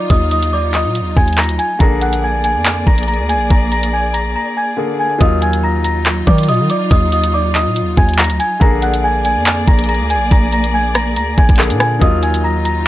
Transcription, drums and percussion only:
0.10 kick, closed hi-hat
0.31 closed hi-hat
0.43 closed hi-hat
0.74 clap, closed hi-hat
0.95 closed hi-hat
1.17 kick
1.28 closed hi-hat
1.33 closed hi-hat
1.38 clap, closed hi-hat
1.43 closed hi-hat
1.49 closed hi-hat
1.59 closed hi-hat
1.80 kick, closed hi-hat
2.01 closed hi-hat
2.13 closed hi-hat
2.44 closed hi-hat
2.65 clap, closed hi-hat
2.87 kick
2.98 closed hi-hat
3.03 closed hi-hat
3.08 closed hi-hat
3.14 closed hi-hat
3.29 closed hi-hat
3.50 kick, closed hi-hat
3.72 closed hi-hat
3.83 closed hi-hat
4.14 closed hi-hat
5.21 kick, closed hi-hat
5.42 closed hi-hat
5.53 closed hi-hat
5.84 closed hi-hat
6.06 clap, closed hi-hat
6.27 kick
6.38 closed hi-hat
6.43 closed hi-hat
6.48 closed hi-hat
6.54 closed hi-hat
6.70 closed hi-hat
6.91 kick, closed hi-hat
7.12 closed hi-hat
7.24 closed hi-hat
7.55 clap, closed hi-hat
7.76 closed hi-hat
7.97 kick
8.09 closed hi-hat
8.14 closed hi-hat
8.18 clap, closed hi-hat
8.24 closed hi-hat
8.30 closed hi-hat
8.40 closed hi-hat
8.61 kick, closed hi-hat
8.82 closed hi-hat
8.94 closed hi-hat
9.25 closed hi-hat
9.46 clap, closed hi-hat
9.68 kick
9.79 closed hi-hat
9.84 closed hi-hat
9.89 closed hi-hat
9.94 closed hi-hat
10.10 closed hi-hat
10.31 kick, closed hi-hat
10.52 closed hi-hat
10.64 closed hi-hat
10.95 cross-stick, closed hi-hat
11.16 closed hi-hat
11.38 kick
11.49 kick, closed hi-hat
11.56 clap, closed hi-hat
11.63 closed hi-hat
11.70 closed hi-hat
11.80 cross-stick, closed hi-hat
12.02 kick, closed hi-hat
12.23 closed hi-hat
12.34 closed hi-hat
12.65 closed hi-hat

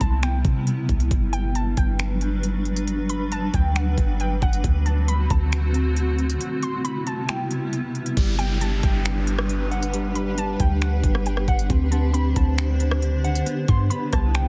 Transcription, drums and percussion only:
0.01 kick, closed hi-hat
0.23 finger snap, closed hi-hat
0.45 kick, closed hi-hat
0.67 closed hi-hat
0.89 kick, closed hi-hat
1.00 closed hi-hat
1.11 kick, closed hi-hat
1.33 closed hi-hat
1.55 closed hi-hat
1.77 kick, closed hi-hat
1.99 finger snap, closed hi-hat
2.21 closed hi-hat
2.43 closed hi-hat
2.65 closed hi-hat
2.76 closed hi-hat
2.88 closed hi-hat
3.09 closed hi-hat
3.32 closed hi-hat
3.54 kick, closed hi-hat
3.76 finger snap, closed hi-hat
3.98 kick, closed hi-hat
4.20 closed hi-hat
4.42 kick, closed hi-hat
4.53 closed hi-hat
4.64 kick, closed hi-hat
4.86 closed hi-hat
5.08 closed hi-hat
5.30 kick, closed hi-hat
5.52 finger snap, closed hi-hat
5.74 closed hi-hat
5.96 closed hi-hat
6.19 closed hi-hat
6.30 closed hi-hat
6.41 closed hi-hat
6.63 closed hi-hat
6.85 closed hi-hat
7.07 closed hi-hat
7.29 finger snap, closed hi-hat
7.51 closed hi-hat
7.73 closed hi-hat
7.95 closed hi-hat
8.06 closed hi-hat
8.17 kick, closed hi-hat, crash
8.39 closed hi-hat
8.61 closed hi-hat
8.83 kick, closed hi-hat
9.05 finger snap, closed hi-hat
9.27 closed hi-hat
9.39 cross-stick
9.49 closed hi-hat
9.72 closed hi-hat
9.83 closed hi-hat
9.94 closed hi-hat
10.15 closed hi-hat
10.38 closed hi-hat
10.60 kick, closed hi-hat
10.82 finger snap, closed hi-hat
11.04 kick, closed hi-hat
11.15 cross-stick
11.26 closed hi-hat
11.37 cross-stick
11.48 kick, closed hi-hat
11.59 closed hi-hat
11.70 kick, closed hi-hat
11.92 closed hi-hat
12.14 closed hi-hat
12.36 kick, closed hi-hat
12.58 finger snap, closed hi-hat
12.80 closed hi-hat
12.91 cross-stick
13.02 closed hi-hat
13.24 closed hi-hat
13.35 closed hi-hat
13.46 closed hi-hat
13.68 kick, closed hi-hat
13.91 closed hi-hat
14.13 kick, cross-stick, closed hi-hat
14.35 finger snap, closed hi-hat

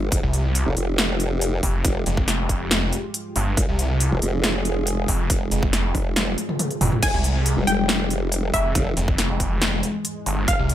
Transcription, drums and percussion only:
0.12 kick, closed hi-hat
0.33 closed hi-hat
0.55 closed hi-hat
0.77 closed hi-hat
0.98 snare, closed hi-hat
1.20 closed hi-hat
1.41 closed hi-hat
1.63 kick, open hi-hat
1.85 kick, closed hi-hat
2.06 closed hi-hat
2.17 kick
2.28 snare, closed hi-hat
2.49 kick, closed hi-hat
2.71 snare, closed hi-hat
2.93 closed hi-hat
3.14 closed hi-hat
3.36 open hi-hat
3.57 kick, closed hi-hat
3.79 closed hi-hat
4.00 closed hi-hat
4.22 closed hi-hat
4.44 snare, closed hi-hat
4.65 closed hi-hat
4.87 closed hi-hat
5.08 kick, open hi-hat
5.30 kick, closed hi-hat
5.51 closed hi-hat
5.63 kick
5.73 snare, closed hi-hat
5.95 kick, open hi-hat
6.16 snare, closed hi-hat, high tom
6.27 high tom
6.38 closed hi-hat
6.49 mid tom
6.59 closed hi-hat, mid tom
6.71 closed hi-hat
6.81 mid tom, open hi-hat
6.92 mid tom
7.03 kick, closed hi-hat, crash
7.24 closed hi-hat
7.46 closed hi-hat
7.67 closed hi-hat
7.89 snare, closed hi-hat
8.10 closed hi-hat
8.32 closed hi-hat
8.54 kick, open hi-hat
8.75 kick, closed hi-hat
8.97 closed hi-hat
9.08 kick
9.18 snare, closed hi-hat
9.40 kick, closed hi-hat
9.62 snare, closed hi-hat
9.83 closed hi-hat
10.05 closed hi-hat
10.26 open hi-hat
10.48 kick, closed hi-hat
10.69 closed hi-hat

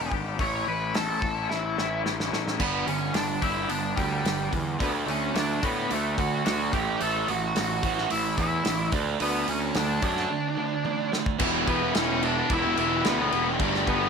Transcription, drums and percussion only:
0.12 kick
0.39 kick, open hi-hat
0.95 snare, open hi-hat
1.22 kick
1.51 snare
1.78 snare
2.06 snare
2.20 snare
2.33 snare
2.48 snare
2.60 kick, crash
2.88 open hi-hat
3.14 snare, open hi-hat
3.42 kick, open hi-hat
3.70 open hi-hat
3.97 kick, open hi-hat
4.25 snare, open hi-hat
4.53 kick, open hi-hat
4.80 kick, open hi-hat
5.08 open hi-hat
5.36 snare, open hi-hat
5.63 kick, open hi-hat
5.91 open hi-hat
6.18 kick, open hi-hat
6.46 snare, open hi-hat
6.73 kick, open hi-hat
7.01 open hi-hat
7.28 open hi-hat
7.56 snare, open hi-hat
7.83 kick, open hi-hat
7.98 snare
8.10 open hi-hat
8.38 kick, open hi-hat
8.65 snare, open hi-hat
8.92 kick, open hi-hat
9.20 open hi-hat
9.48 open hi-hat
9.75 snare, open hi-hat
10.02 kick, open hi-hat
10.17 snare
10.85 high tom
11.13 snare
11.26 kick
11.39 kick, crash
11.67 kick, crash
11.95 snare, crash
12.23 crash
12.50 kick, crash
12.77 crash
13.05 snare, crash
13.32 crash
13.60 kick, crash
13.74 snare
13.87 kick, crash

